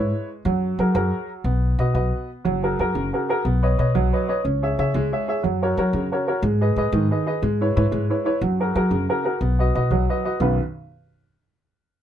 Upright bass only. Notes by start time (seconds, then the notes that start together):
Already playing: G#2
0.45 F#2
0.79 F#3
0.95 F#2
1.44 B1
1.79 B2
1.95 B1
2.45 F#1
2.79 F#2
2.95 F#1
3.45 B1
3.79 B2
3.95 B1
4.45 C#2
4.79 C#3
4.94 C#2
5.44 F#2
5.77 F#3
5.93 F#2
6.42 G#2
6.76 G#2
6.92 G#2
7.42 G#2
7.77 G#2
7.92 G#2
8.41 F#2
8.75 F#3
8.91 F#2
9.41 B1
9.75 B2
9.91 B1
10.40 B1